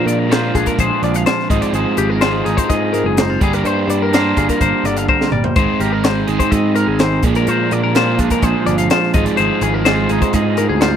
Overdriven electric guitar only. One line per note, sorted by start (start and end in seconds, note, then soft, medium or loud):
0.00 0.28 A#2 medium
0.00 0.31 F3 medium
0.00 0.31 G#3 medium
0.00 0.30 D4 medium
0.00 0.32 F4 medium
0.30 1.48 A#2 medium
0.30 1.50 F3 medium
0.30 1.49 G#3 medium
0.30 1.49 D4 medium
0.30 1.52 F4 medium
1.50 2.20 G#3 medium
1.50 2.21 C4 medium
1.50 2.23 F4 medium
1.50 2.21 G#4 loud
2.21 3.40 G#3 medium
2.21 3.40 C4 medium
2.21 3.41 F4 medium
2.21 3.41 G#4 medium
3.41 4.12 G3 medium
3.41 4.13 A#3 medium
3.41 4.12 D4 loud
3.41 4.15 G4 loud
4.12 5.31 G3 medium
4.12 5.57 A#3 medium
4.12 5.32 D4 medium
4.12 5.32 G4 medium
5.56 6.29 G#3 medium
5.56 6.28 C4 medium
5.56 6.27 D#4 loud
5.56 6.27 G#4 loud
6.27 7.23 G#3 medium
6.27 7.24 C4 medium
6.27 7.22 D#4 medium
6.27 7.25 G#4 medium
7.23 7.94 A#2 medium
7.23 7.96 F3 medium
7.23 7.96 G#3 medium
7.23 7.95 D4 medium
7.23 7.98 G#4 loud
7.96 9.14 A#2 medium
7.96 9.14 F3 medium
7.96 9.13 G#3 medium
7.96 9.14 D4 medium
7.96 9.15 G#4 medium
9.14 9.84 G#3 medium
9.14 9.85 C4 medium
9.14 9.86 F4 loud
9.14 9.86 G#4 loud
9.85 10.97 G#3 medium
9.85 10.97 C4 medium
9.85 10.97 F4 medium
9.85 10.97 G#4 medium